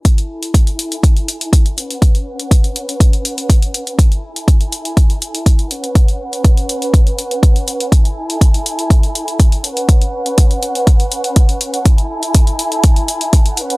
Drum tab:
HH |xx-xxxxxxxxxxxxx|xx-xxxxxxxxxxxxx|xx-xxxxxxxxxxxxx|xx-xxxxxxxxxxxxx|
BD |o---o---o---o---|o---o---o---o---|o---o---o---o---|o---o---o---o---|

HH |xx-xxxxxxxxxxxxx|xx-xxxxxxxxxxxxx|xx-xxxxxxxxxxxxx|
BD |o---o---o---o---|o---o---o---o---|o---o---o---o---|